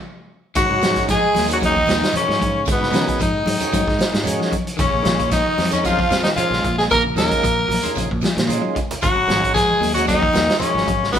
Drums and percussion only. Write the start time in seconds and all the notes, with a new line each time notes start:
0.55 kick, closed hi-hat, low conga, shekere
0.82 snare, closed hi-hat, high conga, shekere
0.96 kick, snare, closed hi-hat, shekere
1.08 kick, snare, closed hi-hat, shekere
1.34 snare, open hi-hat, high conga, shekere
1.47 closed hi-hat, low conga, shekere
1.60 kick, closed hi-hat, high conga, shekere
1.74 kick, high conga
1.86 snare, closed hi-hat, high conga, shekere
2.01 snare, closed hi-hat, shekere
2.12 closed hi-hat, high conga, low conga, shekere
2.30 snare
2.38 kick, closed hi-hat, high conga, shekere
2.66 kick, closed hi-hat, low conga, shekere
2.83 snare
2.92 snare, closed hi-hat, high conga, shekere
3.07 kick, closed hi-hat, shekere
3.19 kick, closed hi-hat, shekere
3.34 high conga
3.46 open hi-hat, high conga, shekere
3.60 closed hi-hat, low conga, shekere
3.72 kick, closed hi-hat, high conga, shekere
3.88 kick, snare
3.99 snare, closed hi-hat, high conga, shekere
4.12 snare, closed hi-hat, shekere
4.24 closed hi-hat, high conga, low conga, shekere
4.41 snare
4.51 kick, closed hi-hat, high conga, shekere
4.67 closed hi-hat
4.78 kick, closed hi-hat, low conga, shekere
5.05 snare, closed hi-hat, high conga, shekere
5.19 kick, closed hi-hat, shekere
5.31 kick, snare, closed hi-hat, shekere
5.46 high conga
5.58 snare, open hi-hat, high conga, shekere
5.71 closed hi-hat, low conga, shekere
5.84 kick, closed hi-hat, shekere
5.99 kick
6.10 snare, closed hi-hat, high conga, shekere
6.24 snare, closed hi-hat, shekere
6.36 closed hi-hat, high conga, low conga, shekere
6.53 snare
6.63 kick, closed hi-hat, shekere
6.79 snare
6.90 kick, closed hi-hat, low conga, shekere
7.16 snare, closed hi-hat, high conga, shekere
7.30 kick, snare, closed hi-hat, shekere
7.43 kick, closed hi-hat, shekere
7.58 high conga
7.70 open hi-hat, high conga, shekere
7.82 closed hi-hat, low conga, shekere
7.95 kick, closed hi-hat, shekere
8.11 kick
8.21 snare, closed hi-hat, high conga, shekere
8.37 snare, closed hi-hat, high conga, shekere
8.49 closed hi-hat, high conga, shekere
8.76 kick, closed hi-hat, shekere
8.91 closed hi-hat, low conga
9.02 kick, closed hi-hat, low conga, shekere
9.28 snare, closed hi-hat, high conga, shekere
9.43 kick, closed hi-hat, shekere
9.55 kick, snare, closed hi-hat, shekere
9.70 high conga
9.82 open hi-hat, high conga, shekere
9.95 closed hi-hat, low conga, shekere
10.07 kick, snare, closed hi-hat, high conga, shekere
10.22 kick, high conga
10.33 snare, closed hi-hat, high conga, shekere
10.48 snare, closed hi-hat, shekere
10.59 closed hi-hat, high conga, low conga, shekere
10.77 snare
10.86 kick, closed hi-hat, high conga, shekere
11.03 snare
11.13 kick, closed hi-hat, low conga, shekere